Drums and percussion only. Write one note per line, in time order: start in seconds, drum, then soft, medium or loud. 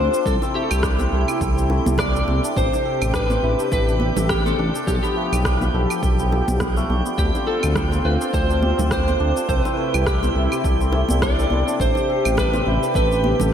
0.14 shaker medium
0.26 kick loud
0.26 shaker medium
0.42 high bongo soft
0.42 shaker soft
0.71 claves medium
0.71 shaker medium
0.83 kick loud
0.83 cross-stick medium
0.83 shaker medium
0.99 high bongo soft
0.99 high conga medium
0.99 shaker soft
1.28 claves medium
1.28 shaker medium
1.41 kick loud
1.41 shaker medium
1.58 shaker soft
1.70 high bongo medium
1.86 high conga medium
1.86 shaker medium
1.98 kick loud
1.98 cross-stick loud
1.98 high conga medium
1.98 low conga medium
1.98 shaker medium
2.16 shaker soft
2.28 high conga medium
2.44 shaker medium
2.57 kick loud
2.57 shaker medium
2.73 high bongo soft
2.73 shaker soft
3.02 claves medium
3.02 shaker medium
3.14 kick loud
3.14 cross-stick medium
3.14 low conga medium
3.14 shaker medium
3.30 high bongo medium
3.30 high conga medium
3.30 shaker soft
3.59 shaker medium
3.72 kick loud
3.72 high bongo soft
3.72 shaker medium
3.89 shaker soft
4.00 high conga medium
4.17 low conga medium
4.17 shaker medium
4.29 kick loud
4.29 cross-stick loud
4.29 shaker medium
4.46 high conga medium
4.46 shaker soft
4.75 shaker medium
4.87 kick loud
4.87 shaker medium
5.03 high bongo soft
5.03 shaker soft
5.33 claves medium
5.33 shaker medium
5.45 kick loud
5.45 cross-stick medium
5.45 shaker soft
5.61 high bongo soft
5.61 high conga medium
5.61 shaker soft
5.90 claves medium
5.90 shaker medium
6.03 kick loud
6.03 shaker medium
6.19 shaker soft
6.32 high bongo medium
6.48 high conga medium
6.48 shaker medium
6.60 kick loud
6.60 cross-stick medium
6.60 high conga medium
6.60 low conga medium
6.60 shaker medium
6.77 shaker soft
6.90 high conga medium
7.06 shaker medium
7.18 kick loud
7.18 shaker medium
7.35 high bongo medium
7.35 shaker soft
7.63 claves medium
7.63 shaker medium
7.76 kick loud
7.76 cross-stick medium
7.76 low conga medium
7.76 shaker soft
7.92 high bongo soft
7.92 high conga medium
7.92 shaker soft
8.21 shaker medium
8.34 kick loud
8.34 high bongo soft
8.34 shaker medium
8.50 shaker soft
8.63 high conga medium
8.79 low conga loud
8.79 shaker medium
8.91 kick medium
8.91 cross-stick medium
8.91 shaker medium
9.08 high conga medium
9.08 shaker soft
9.37 shaker medium
9.49 kick loud
9.49 shaker soft
9.65 high bongo medium
9.65 shaker soft
9.94 claves medium
9.94 shaker medium
10.07 kick loud
10.07 cross-stick medium
10.07 shaker soft
10.23 high bongo soft
10.23 high conga medium
10.23 shaker soft
10.52 claves medium
10.52 shaker medium
10.64 kick loud
10.64 shaker medium
10.81 shaker soft
10.92 high bongo medium
11.09 high conga medium
11.09 shaker medium
11.22 kick loud
11.22 cross-stick medium
11.22 high conga medium
11.22 low conga medium
11.22 shaker soft
11.39 shaker soft
11.50 high conga medium
11.68 shaker medium
11.80 kick medium
11.80 shaker medium
11.95 high bongo soft
11.95 shaker soft
12.25 claves medium
12.25 shaker medium
12.37 kick loud
12.37 cross-stick medium
12.37 low conga medium
12.37 shaker soft
12.53 high bongo medium
12.53 high conga medium
12.53 shaker soft
12.83 shaker medium
12.94 kick loud
12.94 high bongo soft
12.94 shaker medium
13.12 shaker soft
13.24 high conga medium
13.40 low conga medium
13.40 shaker medium